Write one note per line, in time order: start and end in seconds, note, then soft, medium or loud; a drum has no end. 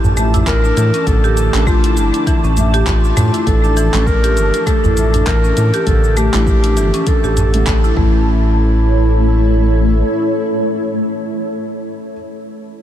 0.00 0.43 A1 medium
0.00 0.17 F3 medium
0.00 1.07 A3 medium
0.00 1.55 D4 medium
0.00 0.13 E4 medium
0.00 7.93 A5 medium
0.00 7.93 D6 medium
0.00 udu medium
0.04 cabasa soft
0.17 1.04 F3 medium
0.17 0.33 A3 loud
0.17 1.05 E4 medium
0.17 closed hi-hat soft
0.17 cabasa medium
0.34 0.62 E4 medium
0.34 closed hi-hat soft
0.34 udu medium
0.34 cabasa soft
0.47 0.72 A1 medium
0.47 1.09 A#4 loud
0.47 kick loud
0.47 clap medium
0.47 closed hi-hat medium
0.47 cabasa soft
0.64 0.71 D4 medium
0.64 cabasa soft
0.77 0.91 A2 loud
0.77 0.93 E3 medium
0.77 closed hi-hat soft
0.77 cabasa medium
0.94 1.22 C#4 medium
0.94 closed hi-hat soft
0.94 cabasa soft
1.07 1.49 A1 loud
1.07 1.50 D3 loud
1.07 1.50 A3 medium
1.07 1.68 A4 loud
1.07 kick loud
1.07 closed hi-hat medium
1.07 cabasa soft
1.24 1.36 G4 loud
1.24 cabasa soft
1.37 closed hi-hat soft
1.37 cabasa medium
1.53 1.99 A1 medium
1.53 1.66 F3 medium
1.53 1.66 A3 medium
1.53 1.67 D4 medium
1.53 clap medium
1.53 closed hi-hat soft
1.53 cabasa soft
1.67 1.83 A3 loud
1.67 1.99 F4 loud
1.67 kick loud
1.67 cabasa soft
1.84 2.12 E4 medium
1.84 closed hi-hat medium
1.84 cabasa soft
1.97 2.11 G1 medium
1.97 2.57 E4 medium
1.97 closed hi-hat soft
1.97 cabasa medium
2.14 2.21 D4 medium
2.14 closed hi-hat soft
2.14 cabasa soft
2.27 2.43 E3 medium
2.27 kick loud
2.27 closed hi-hat medium
2.27 cabasa soft
2.44 2.83 A1 medium
2.44 2.72 C#4 medium
2.44 cabasa soft
2.57 3.44 A3 medium
2.57 3.45 E5 medium
2.57 closed hi-hat soft
2.57 udu medium
2.57 cabasa medium
2.74 2.86 G4 loud
2.74 closed hi-hat soft
2.74 cabasa soft
2.87 3.12 A1 medium
2.87 3.48 F4 medium
2.87 kick loud
2.87 clap medium
2.87 closed hi-hat medium
2.87 cabasa soft
3.04 cabasa soft
3.17 3.31 A2 loud
3.17 3.33 A3 loud
3.17 closed hi-hat soft
3.17 udu medium
3.17 cabasa medium
3.34 3.62 E4 medium
3.34 closed hi-hat soft
3.34 cabasa soft
3.46 3.89 A1 loud
3.46 3.89 F3 medium
3.46 3.90 A3 medium
3.46 3.90 D4 medium
3.46 4.08 A4 loud
3.46 kick loud
3.46 closed hi-hat medium
3.46 cabasa soft
3.64 3.71 D4 medium
3.64 cabasa soft
3.77 3.93 E3 medium
3.77 closed hi-hat soft
3.77 cabasa medium
3.93 4.38 A1 medium
3.93 4.06 F3 medium
3.93 4.06 A3 medium
3.93 4.22 C#4 medium
3.93 4.07 D4 medium
3.93 clap medium
3.93 closed hi-hat soft
3.93 cabasa soft
4.07 4.68 A#4 loud
4.07 kick loud
4.07 cabasa soft
4.24 4.36 G4 loud
4.24 closed hi-hat medium
4.24 cabasa soft
4.37 4.51 G1 medium
4.37 closed hi-hat soft
4.37 cabasa medium
4.54 closed hi-hat soft
4.54 cabasa soft
4.67 4.83 A3 loud
4.67 5.28 A4 loud
4.67 kick loud
4.67 closed hi-hat medium
4.67 cabasa soft
4.84 5.23 A1 medium
4.84 5.12 E4 medium
4.84 udu medium
4.84 cabasa soft
4.97 5.84 F3 medium
4.97 5.85 E4 medium
4.97 closed hi-hat soft
4.97 cabasa medium
5.14 5.21 D4 medium
5.14 closed hi-hat soft
5.14 udu medium
5.14 cabasa soft
5.27 5.52 A1 medium
5.27 5.43 E3 medium
5.27 5.89 A#4 loud
5.27 kick loud
5.27 clap medium
5.27 closed hi-hat medium
5.27 cabasa soft
5.44 5.72 C#4 medium
5.44 cabasa soft
5.57 5.71 A2 loud
5.57 closed hi-hat medium
5.57 cabasa medium
5.74 5.86 G4 medium
5.74 closed hi-hat soft
5.74 cabasa soft
5.87 6.29 A1 medium
5.87 6.30 D3 loud
5.87 6.30 A3 medium
5.87 6.19 A4 loud
5.87 kick loud
5.87 closed hi-hat medium
5.87 cabasa soft
6.04 cabasa soft
6.17 6.33 A3 loud
6.17 7.09 G4 loud
6.17 closed hi-hat soft
6.17 cabasa medium
6.33 6.79 A1 medium
6.33 6.46 F3 medium
6.33 6.46 A3 medium
6.33 6.47 D4 medium
6.33 6.62 E4 medium
6.33 clap medium
6.33 closed hi-hat soft
6.33 cabasa soft
6.47 kick loud
6.47 cabasa soft
6.64 6.71 D4 medium
6.64 closed hi-hat medium
6.64 cabasa soft
6.77 6.91 G1 medium
6.77 6.93 E3 medium
6.77 closed hi-hat soft
6.77 cabasa medium
6.94 7.22 C#4 medium
6.94 closed hi-hat soft
6.94 cabasa soft
7.07 7.96 A4 medium
7.07 kick loud
7.07 closed hi-hat medium
7.07 cabasa soft
7.24 7.64 A1 medium
7.24 7.36 G4 loud
7.24 cabasa soft
7.37 closed hi-hat soft
7.37 udu medium
7.37 cabasa medium
7.54 7.98 D3 medium
7.54 7.95 A3 medium
7.54 closed hi-hat medium
7.54 cabasa soft
7.67 7.92 A1 medium
7.67 7.83 A3 loud
7.67 kick loud
7.67 clap medium
7.67 closed hi-hat medium
7.67 cabasa soft
7.84 7.97 E4 medium
7.84 cabasa soft
7.94 10.03 A1 loud
7.94 12.11 E3 medium
7.94 12.13 A3 medium
7.94 8.53 A3 medium
7.94 11.43 A3 medium
7.94 11.43 E4 medium
7.94 11.43 A4 medium
7.94 11.43 C#5 medium
7.94 kick loud
7.94 udu medium
8.00 12.14 C#4 loud